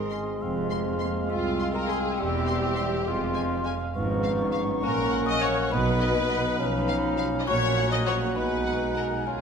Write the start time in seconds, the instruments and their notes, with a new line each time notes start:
Already playing: double bass section G#1, cello section G#2, french horn section G#3 C4, bassoon G#3, viola section A#4, oboe D#5, flute C6
0.11 clarinet C#4, violin section C6
0.41 double bass section F1, cello section F2, clarinet C4, oboe F5
0.70 clarinet G#3, violin section C6
1.01 clarinet A#3, violin section C6
1.30 cello section C2, double bass section C2, clarinet C4, violin section F4, viola section F4, celesta F5
1.60 violin section C6
1.74 viola section A#4, violin section A#4, celesta A#5
1.88 viola section G#4, violin section G#4 C6, celesta G#5
2.18 double bass section E1, cello section E2, french horn section G3, bassoon G3, viola section G4, violin section G4, oboe E5, celesta G5
2.47 violin section C6
2.76 violin section C6
3.06 double bass section F1, cello section F2, french horn section G#3 C4, bassoon G#3, clarinet F4, oboe F5, flute C6
3.35 violin section G#5
3.65 violin section G#5
3.93 double bass section G#1, cello section G#2, french horn section F3 C#4, bassoon B3, clarinet D#4, flute C#6
4.23 violin section F5
4.53 violin section F5
4.83 double bass section A#1, cello section A#2, french horn section F#3, bassoon A#3, clarinet C#4, viola section A#4, violin section A#4, oboe F#5, celesta A#5
5.11 violin section F#5
5.26 viola section D#5, violin section D#5, celesta D#6
5.41 viola section C#5, violin section C#5 F#5, celesta C#6
5.64 violin section C#5
5.71 double bass section B1, cello section B2, clarinet B3, french horn section D#4, bassoon D#4, viola section B4, violin section B4, flute B5, celesta B5
6.01 violin section D#5
6.30 violin section D#5
6.58 double bass section B1, cello section B2, french horn section F3 C#4, bassoon C#4, clarinet D#4, oboe F5
6.88 violin section F5
7.18 violin section F5
7.40 violin section D#5
7.46 double bass section A#1, cello section A#2, french horn section F#3 F#4, clarinet C#4, violin section C#5, viola section C#5, oboe F#5, flute A#5, celesta C#6
7.76 violin section F#5
7.92 violin section D#5, viola section D#5, celesta D#6
8.06 violin section C#5 F#5, viola section C#5, celesta C#6
8.35 double bass section B1, cello section B2, french horn section G#3, bassoon D#4, clarinet D#4, violin section B4, viola section B4, flute G#5, celesta B5
8.66 violin section F#5
8.95 violin section A#4 F#5, viola section A#4, celesta A#5
9.26 double bass section C#2, cello section C#3, bassoon C#4, clarinet F4, french horn section F4, violin section G#4, viola section G#4, oboe F5, celesta G#5